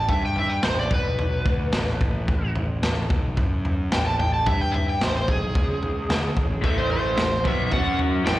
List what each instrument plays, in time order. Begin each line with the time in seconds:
0.09 picked electric bass G2, electric slide guitar E5, kick, floor tom
0.25 electric slide guitar G5
0.36 electric slide guitar E5, floor tom
0.49 electric slide guitar G5
0.63 picked electric bass A1, electric slide guitar C5, snare, floor tom
0.79 electric slide guitar D5
0.91 picked electric bass B1, electric slide guitar B4, kick, floor tom
1.19 floor tom
1.45 picked electric bass D2, kick, floor tom
1.73 picked electric bass A1, snare, floor tom
2.01 picked electric bass A1, kick, floor tom
2.28 picked electric bass A1, kick, floor tom
2.56 floor tom
2.82 picked electric bass A1, snare, floor tom
3.10 picked electric bass B1, kick, floor tom
3.37 picked electric bass F#2, kick, floor tom
3.65 floor tom
3.92 picked electric bass A1, electric slide guitar G5, snare, floor tom
4.06 electric slide guitar A5
4.20 electric slide guitar G5, floor tom
4.34 electric slide guitar A5
4.46 picked electric bass G2, electric slide guitar E5, kick, floor tom
4.61 electric slide guitar G5
4.72 electric slide guitar E5, floor tom
4.89 electric slide guitar G5
5.01 picked electric bass A1, electric slide guitar C5, snare, floor tom
5.17 electric slide guitar C5
5.28 picked electric bass B1, electric slide guitar G#4, kick, floor tom
5.55 picked electric bass C#2, kick, floor tom
5.83 floor tom
6.09 picked electric bass D2, snare, floor tom
6.37 picked electric bass A1, kick, floor tom
6.61 picked electric bass A1, overdriven electric guitar A2 E3 A3, electric slide guitar E5, kick, floor tom
6.78 electric slide guitar C5
6.90 electric slide guitar C5, floor tom
7.17 picked electric bass A1, overdriven electric guitar A2 E3, snare, floor tom
7.44 picked electric bass B1, overdriven electric guitar B2 F#3 B3, electric slide guitar E5, kick, floor tom
7.71 picked electric bass F#2, overdriven electric guitar F#3 C#4 F#4, electric slide guitar F#5, kick, floor tom
7.99 floor tom
8.25 picked electric bass A1, overdriven electric guitar A2 E3 A3, electric slide guitar G5, snare, floor tom